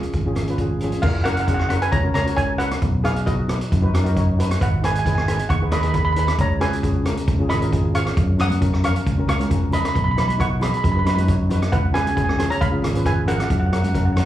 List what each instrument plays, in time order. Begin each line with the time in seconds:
Already playing: steel pan C#4 F4 G#4 F5
0.03 closed hi-hat
0.13 fingered electric bass G#1, kick, closed hi-hat, low conga
0.26 steel pan C#4 F4 G#4
0.35 cross-stick, closed hi-hat, low conga
0.47 steel pan C#4 F4 B4, closed hi-hat
0.58 steel pan C#4 F4 G#4, kick, closed hi-hat
0.70 high conga
0.80 steel pan C#4 F4, closed hi-hat, low conga
0.84 steel pan G#4
0.92 closed hi-hat, low conga
1.02 fingered electric bass F#1, steel pan A#4 F5, kick, crash
1.24 steel pan C#4 F#4 A#4 F#5, cross-stick, closed hi-hat
1.34 steel pan F#5, closed hi-hat
1.40 steel pan F#5
1.47 steel pan C#4 F#4 G#4 F#5, kick, closed hi-hat
1.54 steel pan F#5
1.59 steel pan F#5, cross-stick
1.69 steel pan C#4 F#4 A#4 F#5, cross-stick, closed hi-hat
1.82 steel pan B4 G#5, closed hi-hat
1.92 fingered electric bass C#2, steel pan C#5 A#5, kick, closed hi-hat
2.03 steel pan C#4 F#4 A#4
2.14 fingered electric bass C#2, steel pan C#4 F#4 A#4 C#5 A#5, cross-stick, closed hi-hat
2.25 steel pan C#4 F#4 A#4, closed hi-hat
2.35 steel pan C#4 F#4 A#4 C#5 G#5, kick, closed hi-hat
2.58 steel pan C#4 F#4 A#4 B4 F#5, closed hi-hat
2.71 cross-stick, closed hi-hat
2.82 fingered electric bass B1, kick, closed hi-hat
3.04 steel pan D#4 F#4 G#4 B4 F5, cross-stick, closed hi-hat
3.16 closed hi-hat
3.25 steel pan D#4 F#4 B4 D#5, kick, closed hi-hat
3.48 steel pan D#4 F#4 B4, cross-stick, closed hi-hat
3.61 closed hi-hat
3.72 fingered electric bass F#2, kick, closed hi-hat
3.82 steel pan D#4 F#4 B4
3.94 fingered electric bass F#2, steel pan D#4 F#4 A#4, cross-stick, closed hi-hat
4.04 steel pan D#4 F#4 A#4, closed hi-hat
4.15 steel pan D#4 F#4 C#5, kick, closed hi-hat
4.39 steel pan D#4 F#4 B4, closed hi-hat
4.51 cross-stick, closed hi-hat
4.61 fingered electric bass G#1, steel pan B4 F#5, kick, closed hi-hat
4.82 steel pan D#4 G#4 B4 G#5, cross-stick, closed hi-hat
4.92 steel pan G#5, closed hi-hat
4.99 steel pan G#5
5.06 steel pan D#4 G#4 B4 G#5, kick, closed hi-hat
5.15 steel pan G#5, cross-stick
5.22 steel pan G#5
5.28 steel pan D#4 G#4 B4 G#5, cross-stick, closed hi-hat
5.37 steel pan G#5, closed hi-hat
5.49 fingered electric bass D#2, steel pan F#5 C#6, kick, closed hi-hat
5.61 steel pan D#4 G#4 B4
5.72 fingered electric bass D#2, steel pan D#4 G#4 C#5 D#5 B5, cross-stick, closed hi-hat
5.80 steel pan D#4 B5, closed hi-hat
5.84 steel pan G#4 B4 B5
5.94 steel pan D#4 G#4 B4 B5, kick, closed hi-hat
6.05 steel pan B5
6.13 steel pan D#4 B5, closed hi-hat
6.17 steel pan G#4 B4 B5
6.27 steel pan B5, cross-stick, closed hi-hat
6.38 fingered electric bass C#2, steel pan C#5 A#5, kick, closed hi-hat
6.60 steel pan C#4 F#4 G#4 B4 G#5, cross-stick, closed hi-hat
6.73 closed hi-hat
6.83 steel pan C#4 F#4 G#4, kick, closed hi-hat
7.03 steel pan C#4 F#4 A#4, cross-stick, closed hi-hat
7.17 closed hi-hat
7.28 fingered electric bass C#2, kick, closed hi-hat
7.38 steel pan C#4 F4 G#4
7.49 fingered electric bass G#1, steel pan C#4 F4 G#4 D#5 B5, cross-stick, closed hi-hat
7.61 steel pan C#4 F4 A#4, closed hi-hat
7.71 steel pan C#4 F4 G#4, kick, closed hi-hat
7.94 steel pan C#4 F4 G#4 F5 C#6, closed hi-hat
8.06 cross-stick, closed hi-hat
8.17 fingered electric bass F#2, kick, closed hi-hat
8.38 steel pan C#4 F#4 A#4 F#5 D#6, cross-stick, closed hi-hat, low conga
8.50 closed hi-hat, high conga
8.61 steel pan C#4 F#4 A#4, kick, closed hi-hat
8.73 cross-stick
8.83 steel pan C#4 F#4 A#4 F5 C#6, cross-stick, closed hi-hat, low conga
8.96 closed hi-hat
9.06 fingered electric bass C#2, kick, closed hi-hat
9.18 steel pan C#4 F#4 A#4
9.27 fingered electric bass C#2, steel pan C#4 F#4 A#4 F5 C#6, cross-stick, closed hi-hat
9.39 steel pan C#4 F#4 A#4, closed hi-hat, high conga
9.49 steel pan C#4 F#4 A#4, kick, closed hi-hat, low conga
9.71 steel pan C#4 F#4 A#4 D#5 B5, closed hi-hat, low conga
9.81 steel pan B5
9.85 steel pan B5, cross-stick, closed hi-hat
9.95 fingered electric bass B1, steel pan B5, kick, closed hi-hat
10.04 steel pan B5
10.11 steel pan B5
10.16 steel pan D#4 F#4 B4 B5, cross-stick, closed hi-hat, low conga
10.28 steel pan B5, closed hi-hat, high conga
10.38 steel pan D#4 F#4 B4 F#5 C#6, kick, closed hi-hat
10.60 steel pan D#4 F#4 G#4 D#5 B5, cross-stick, closed hi-hat, low conga
10.70 steel pan B5, closed hi-hat
10.77 steel pan B5
10.84 fingered electric bass F#2, steel pan B5, kick, closed hi-hat
10.92 steel pan D#4 F#4 B5
10.96 steel pan B4 B5
11.05 fingered electric bass F#2, steel pan D#4 F#4 B4 B5, cross-stick, closed hi-hat
11.15 steel pan D#4 F#4 B4 B5, closed hi-hat, high conga
11.27 steel pan D#4 F#4 C#5, kick, closed hi-hat, low conga
11.50 steel pan D#4 F#4 B4, closed hi-hat, low conga
11.62 cross-stick, closed hi-hat
11.72 fingered electric bass C#2, steel pan B4 F#5, kick, closed hi-hat
11.93 steel pan C#4 F#4 G#4 B4 G#5, cross-stick, closed hi-hat, low conga
12.01 steel pan G#5
12.06 steel pan G#5, closed hi-hat, high conga
12.16 steel pan C#4 F#4 G#4 G#5, kick, closed hi-hat
12.25 steel pan G#5
12.29 steel pan G#5, cross-stick
12.38 steel pan C#4 F#4 G#4 G#5, cross-stick, closed hi-hat, low conga
12.50 steel pan C#5 A#5, closed hi-hat
12.61 fingered electric bass C#2, steel pan F5 B5, kick, closed hi-hat
12.71 steel pan C#4 F4 G#4
12.82 fingered electric bass G#1, steel pan C#4 F4 G#4, cross-stick, closed hi-hat
12.95 steel pan C#4 F4 B4, closed hi-hat
13.05 steel pan C#4 F4 G#4 B4 G#5, kick, closed hi-hat, low conga
13.27 steel pan C#4 F4 G#4 A#4 F#5, closed hi-hat, low conga
13.36 steel pan F#5, cross-stick, closed hi-hat
13.44 steel pan F#5
13.50 fingered electric bass F#2, kick, closed hi-hat
13.60 steel pan F#5
13.66 steel pan F#5
13.72 steel pan C#4 F#4 A#4 F#5, cross-stick, closed hi-hat
13.81 steel pan F#5, closed hi-hat, high conga
13.89 steel pan F#5
13.94 steel pan C#4 F#4 A#4 F#5, kick, closed hi-hat
14.05 steel pan F#5
14.13 steel pan C#4 F#4 F#5, cross-stick, closed hi-hat
14.17 steel pan A#4 F#5, low conga